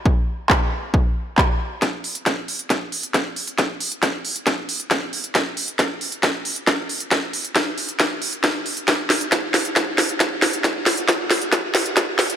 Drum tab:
HH |----------------|x-oxx-oxx-oxx-ox|x-oxx-oxx-oxx-ox|x-oxx-oxx-oxx-ox|
CP |----x-------x---|----------------|----------------|----------------|
SD |----------------|o---o---o---o---|o---o---o---o---|o---o---o---o---|
BD |o---o---o---o---|o---o---o---o---|o---o---o---o---|o---o---o---o---|

HH |x-oxx-oxx-oxx-ox|x-oxx-oxx-oxx-ox|x-oxx-oxx-oxx-ox|
CP |----------------|----------------|----------------|
SD |o---o---o---o---|o-o-o-o-o-o-o-o-|o-o-o-o-o-o-o-o-|
BD |o---o---o---o---|o---o---o---o---|o---o---o---o---|